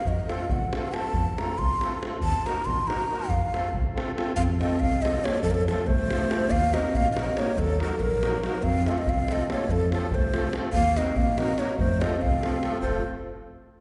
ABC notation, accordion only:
X:1
M:5/8
L:1/8
Q:1/4=141
K:none
V:1 name="Accordion"
z [A,CFA] z [A,CFA] [A,CFA] | z [A,CFA] z [A,CFA] [A,CFA] | z [_B,_E_G_B] z [B,EGB] [B,EGB] | z [A,CFA] z [A,CFA] [A,CFA] |
z [F,A,CFA] z [F,A,CFA] [F,A,CFA] | z [F,A,CFA] z [F,A,CFA] [F,A,CFA] | z [_G,_B,_E_G_B] z [G,B,EGB] [G,B,EGB] | z [_G,_B,_E_G_B] z [G,B,EGB] [G,B,EGB] |
z [F,A,CFA] z [F,A,CFA] [F,A,CFA] | z [F,A,CFA] z [F,A,CFA] [F,A,CFA] | z [_G,_B,_E_G_B] z [G,B,EGB] [G,B,EGB] | z [F,A,CFA] z [F,A,CFA] [F,A,CFA] |
[A,CFA] z4 |]